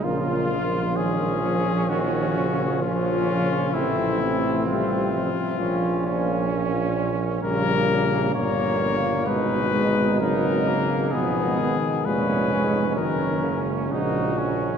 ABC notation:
X:1
M:4/4
L:1/8
Q:1/4=65
K:Bbphr
V:1 name="Trumpet"
F2 A2 G2 F2 | _F2 =F4- F z | B2 d2 c2 B2 | A2 c2 B z G2 |]
V:2 name="Trumpet"
F2 D4 D2 | =C C2 z D D3 | B,2 B,2 E2 E B, | C z D2 D2 E D |]
V:3 name="French horn" clef=bass
B,2 E, F,4- F, | =A,2 =G, F, F,3 z | =G,2 B, B, A, A, _G,2 | F, E, A,2 G, z F,2 |]
V:4 name="Euphonium" clef=bass
D, F,3 E, D, F, D, | =C,4 B,,3 z | D, D, B,,2 C,2 D,2 | C,2 B,, A,, E, D,2 z |]
V:5 name="Tuba" clef=bass
B,,,8 | =A,,,3 z B,,,4 | B,,,2 =G,,,2 A,,,4 | A,,, z F,,,2 G,,,2 B,,,2 |]